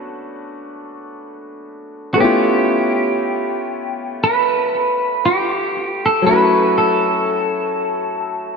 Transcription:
0, 0, Header, 1, 3, 480
1, 0, Start_track
1, 0, Tempo, 1016949
1, 1034, Time_signature, 4, 2, 24, 8
1, 4043, End_track
2, 0, Start_track
2, 0, Title_t, "Clean electric guitar"
2, 0, Program_c, 0, 27
2, 0, Note_on_c, 0, 69, 96
2, 775, Note_off_c, 0, 69, 0
2, 1010, Note_on_c, 0, 66, 72
2, 1036, Note_off_c, 0, 66, 0
2, 1040, Note_on_c, 0, 67, 96
2, 1978, Note_off_c, 0, 67, 0
2, 2000, Note_on_c, 0, 71, 105
2, 2479, Note_off_c, 0, 71, 0
2, 2481, Note_on_c, 0, 67, 91
2, 2857, Note_off_c, 0, 67, 0
2, 2859, Note_on_c, 0, 69, 98
2, 2955, Note_off_c, 0, 69, 0
2, 2957, Note_on_c, 0, 71, 108
2, 3179, Note_off_c, 0, 71, 0
2, 3199, Note_on_c, 0, 69, 96
2, 4043, Note_off_c, 0, 69, 0
2, 4043, End_track
3, 0, Start_track
3, 0, Title_t, "Grand piano"
3, 0, Program_c, 1, 0
3, 0, Control_c, 1, 64, 127
3, 0, Note_on_c, 1, 57, 67
3, 0, Note_on_c, 1, 59, 61
3, 0, Note_on_c, 1, 61, 58
3, 0, Note_on_c, 1, 62, 62
3, 0, Note_on_c, 1, 66, 74
3, 1006, Note_off_c, 1, 57, 0
3, 1012, Note_off_c, 1, 59, 0
3, 1017, Note_off_c, 1, 61, 0
3, 1017, Note_on_c, 1, 57, 69
3, 1022, Note_off_c, 1, 62, 0
3, 1027, Note_off_c, 1, 66, 0
3, 1027, Note_on_c, 1, 59, 65
3, 1037, Note_on_c, 1, 61, 64
3, 1040, Control_c, 1, 64, 0
3, 1048, Note_on_c, 1, 64, 61
3, 1059, Note_on_c, 1, 65, 73
3, 1129, Control_c, 1, 64, 127
3, 2927, Note_off_c, 1, 57, 0
3, 2932, Note_off_c, 1, 59, 0
3, 2937, Note_off_c, 1, 61, 0
3, 2937, Note_on_c, 1, 54, 65
3, 2942, Note_off_c, 1, 64, 0
3, 2947, Note_on_c, 1, 57, 60
3, 2948, Note_off_c, 1, 65, 0
3, 2957, Note_on_c, 1, 61, 63
3, 2961, Control_c, 1, 64, 0
3, 2968, Note_on_c, 1, 64, 65
3, 2979, Note_on_c, 1, 66, 77
3, 3054, Control_c, 1, 64, 127
3, 4043, Note_off_c, 1, 54, 0
3, 4043, Note_off_c, 1, 57, 0
3, 4043, Note_off_c, 1, 61, 0
3, 4043, Note_off_c, 1, 64, 0
3, 4043, Note_off_c, 1, 66, 0
3, 4043, End_track
0, 0, End_of_file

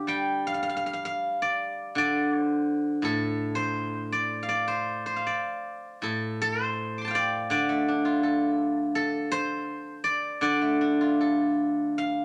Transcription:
0, 0, Header, 1, 2, 480
1, 0, Start_track
1, 0, Tempo, 762389
1, 55, Time_signature, 2, 2, 24, 8
1, 1013, Tempo, 718563
1, 2933, Tempo, 771208
1, 4373, Tempo, 728155
1, 6773, Tempo, 777202
1, 7892, End_track
2, 0, Start_track
2, 0, Title_t, "Guzheng"
2, 0, Program_c, 0, 107
2, 0, Note_on_c, 0, 50, 54
2, 0, Note_on_c, 0, 67, 68
2, 0, Note_on_c, 0, 69, 67
2, 0, Note_on_c, 0, 72, 72
2, 0, Note_on_c, 0, 74, 82
2, 45, Note_on_c, 0, 55, 49
2, 52, Note_on_c, 0, 79, 83
2, 246, Note_off_c, 0, 74, 0
2, 295, Note_on_c, 0, 77, 82
2, 339, Note_off_c, 0, 77, 0
2, 342, Note_on_c, 0, 77, 60
2, 393, Note_off_c, 0, 77, 0
2, 395, Note_on_c, 0, 77, 74
2, 435, Note_off_c, 0, 77, 0
2, 437, Note_on_c, 0, 77, 58
2, 442, Note_off_c, 0, 72, 0
2, 480, Note_off_c, 0, 77, 0
2, 482, Note_on_c, 0, 77, 69
2, 540, Note_off_c, 0, 50, 0
2, 541, Note_off_c, 0, 77, 0
2, 543, Note_on_c, 0, 77, 63
2, 585, Note_off_c, 0, 77, 0
2, 588, Note_on_c, 0, 77, 66
2, 659, Note_off_c, 0, 77, 0
2, 662, Note_on_c, 0, 77, 79
2, 819, Note_off_c, 0, 69, 0
2, 894, Note_on_c, 0, 74, 80
2, 1032, Note_off_c, 0, 79, 0
2, 1035, Note_off_c, 0, 67, 0
2, 1242, Note_on_c, 0, 50, 56
2, 1258, Note_off_c, 0, 74, 0
2, 1261, Note_on_c, 0, 74, 81
2, 1486, Note_off_c, 0, 55, 0
2, 1548, Note_off_c, 0, 74, 0
2, 1548, Note_on_c, 0, 72, 81
2, 1755, Note_off_c, 0, 77, 0
2, 1957, Note_on_c, 0, 45, 56
2, 1973, Note_on_c, 0, 69, 79
2, 2310, Note_off_c, 0, 72, 0
2, 2310, Note_on_c, 0, 72, 84
2, 2682, Note_off_c, 0, 50, 0
2, 2693, Note_on_c, 0, 74, 84
2, 2895, Note_on_c, 0, 77, 61
2, 2933, Note_off_c, 0, 74, 0
2, 2935, Note_on_c, 0, 74, 84
2, 3051, Note_off_c, 0, 72, 0
2, 3053, Note_on_c, 0, 72, 68
2, 3290, Note_off_c, 0, 72, 0
2, 3292, Note_on_c, 0, 72, 68
2, 3354, Note_off_c, 0, 77, 0
2, 3356, Note_on_c, 0, 77, 50
2, 3404, Note_off_c, 0, 69, 0
2, 3405, Note_off_c, 0, 45, 0
2, 3418, Note_off_c, 0, 74, 0
2, 3420, Note_on_c, 0, 74, 66
2, 3888, Note_on_c, 0, 45, 52
2, 3898, Note_on_c, 0, 69, 69
2, 4133, Note_off_c, 0, 72, 0
2, 4136, Note_off_c, 0, 69, 0
2, 4136, Note_on_c, 0, 69, 89
2, 4273, Note_off_c, 0, 69, 0
2, 4273, Note_on_c, 0, 72, 89
2, 4396, Note_off_c, 0, 77, 0
2, 4493, Note_on_c, 0, 86, 43
2, 4517, Note_on_c, 0, 84, 45
2, 4538, Note_on_c, 0, 81, 54
2, 4557, Note_on_c, 0, 79, 57
2, 4577, Note_on_c, 0, 77, 62
2, 4581, Note_off_c, 0, 74, 0
2, 4605, Note_on_c, 0, 74, 86
2, 4837, Note_on_c, 0, 50, 60
2, 4840, Note_off_c, 0, 74, 0
2, 4843, Note_on_c, 0, 74, 87
2, 4848, Note_off_c, 0, 45, 0
2, 4962, Note_on_c, 0, 57, 42
2, 5090, Note_on_c, 0, 62, 48
2, 5198, Note_on_c, 0, 65, 47
2, 5296, Note_off_c, 0, 86, 0
2, 5319, Note_on_c, 0, 69, 45
2, 5379, Note_off_c, 0, 84, 0
2, 5428, Note_off_c, 0, 72, 0
2, 5492, Note_off_c, 0, 81, 0
2, 5581, Note_off_c, 0, 79, 0
2, 5677, Note_off_c, 0, 77, 0
2, 5786, Note_off_c, 0, 69, 0
2, 5794, Note_on_c, 0, 69, 86
2, 5923, Note_off_c, 0, 57, 0
2, 6033, Note_on_c, 0, 72, 102
2, 6046, Note_off_c, 0, 62, 0
2, 6060, Note_off_c, 0, 74, 0
2, 6161, Note_off_c, 0, 65, 0
2, 6280, Note_off_c, 0, 50, 0
2, 6510, Note_on_c, 0, 74, 90
2, 6756, Note_on_c, 0, 50, 65
2, 6762, Note_off_c, 0, 74, 0
2, 6765, Note_on_c, 0, 74, 91
2, 6883, Note_on_c, 0, 57, 43
2, 7003, Note_on_c, 0, 62, 45
2, 7126, Note_on_c, 0, 65, 43
2, 7211, Note_off_c, 0, 69, 0
2, 7248, Note_on_c, 0, 69, 44
2, 7304, Note_off_c, 0, 72, 0
2, 7725, Note_on_c, 0, 77, 77
2, 7851, Note_off_c, 0, 57, 0
2, 7892, Note_off_c, 0, 50, 0
2, 7892, Note_off_c, 0, 62, 0
2, 7892, Note_off_c, 0, 65, 0
2, 7892, Note_off_c, 0, 69, 0
2, 7892, Note_off_c, 0, 74, 0
2, 7892, Note_off_c, 0, 77, 0
2, 7892, End_track
0, 0, End_of_file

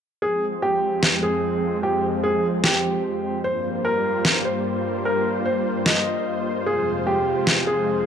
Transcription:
0, 0, Header, 1, 4, 480
1, 0, Start_track
1, 0, Key_signature, -4, "minor"
1, 0, Tempo, 402685
1, 263, Time_signature, 4, 2, 24, 8
1, 9608, End_track
2, 0, Start_track
2, 0, Title_t, "Grand piano"
2, 0, Program_c, 0, 0
2, 263, Note_on_c, 0, 68, 81
2, 520, Note_off_c, 0, 68, 0
2, 744, Note_on_c, 0, 67, 81
2, 1370, Note_off_c, 0, 67, 0
2, 1464, Note_on_c, 0, 68, 81
2, 2090, Note_off_c, 0, 68, 0
2, 2184, Note_on_c, 0, 67, 77
2, 2440, Note_off_c, 0, 67, 0
2, 2664, Note_on_c, 0, 68, 81
2, 2920, Note_off_c, 0, 68, 0
2, 3144, Note_on_c, 0, 67, 81
2, 4010, Note_off_c, 0, 67, 0
2, 4104, Note_on_c, 0, 72, 87
2, 4360, Note_off_c, 0, 72, 0
2, 4585, Note_on_c, 0, 70, 85
2, 5211, Note_off_c, 0, 70, 0
2, 5304, Note_on_c, 0, 72, 80
2, 5931, Note_off_c, 0, 72, 0
2, 6024, Note_on_c, 0, 70, 73
2, 6280, Note_off_c, 0, 70, 0
2, 6504, Note_on_c, 0, 72, 78
2, 6760, Note_off_c, 0, 72, 0
2, 6984, Note_on_c, 0, 75, 79
2, 7851, Note_off_c, 0, 75, 0
2, 7944, Note_on_c, 0, 68, 85
2, 8200, Note_off_c, 0, 68, 0
2, 8423, Note_on_c, 0, 67, 84
2, 9050, Note_off_c, 0, 67, 0
2, 9144, Note_on_c, 0, 68, 81
2, 9608, Note_off_c, 0, 68, 0
2, 9608, End_track
3, 0, Start_track
3, 0, Title_t, "Supersaw synth"
3, 0, Program_c, 1, 81
3, 264, Note_on_c, 1, 41, 77
3, 264, Note_on_c, 1, 53, 72
3, 264, Note_on_c, 1, 56, 70
3, 264, Note_on_c, 1, 60, 73
3, 264, Note_on_c, 1, 72, 83
3, 4065, Note_off_c, 1, 60, 0
3, 4066, Note_off_c, 1, 41, 0
3, 4066, Note_off_c, 1, 53, 0
3, 4066, Note_off_c, 1, 56, 0
3, 4104, Note_on_c, 1, 55, 70
3, 4104, Note_on_c, 1, 65, 72
3, 4105, Note_on_c, 1, 43, 77
3, 4105, Note_on_c, 1, 58, 70
3, 7906, Note_off_c, 1, 43, 0
3, 7906, Note_off_c, 1, 55, 0
3, 7906, Note_off_c, 1, 58, 0
3, 7944, Note_on_c, 1, 41, 77
3, 7944, Note_on_c, 1, 48, 70
3, 7944, Note_on_c, 1, 56, 70
3, 9608, Note_off_c, 1, 41, 0
3, 9608, Note_off_c, 1, 48, 0
3, 9608, Note_off_c, 1, 56, 0
3, 9608, Note_off_c, 1, 65, 0
3, 9608, Note_off_c, 1, 72, 0
3, 9608, End_track
4, 0, Start_track
4, 0, Title_t, "Drums"
4, 1224, Note_on_c, 9, 38, 103
4, 1343, Note_off_c, 9, 38, 0
4, 3143, Note_on_c, 9, 38, 110
4, 3263, Note_off_c, 9, 38, 0
4, 5064, Note_on_c, 9, 38, 108
4, 5183, Note_off_c, 9, 38, 0
4, 6984, Note_on_c, 9, 38, 108
4, 7103, Note_off_c, 9, 38, 0
4, 8904, Note_on_c, 9, 38, 104
4, 9023, Note_off_c, 9, 38, 0
4, 9608, End_track
0, 0, End_of_file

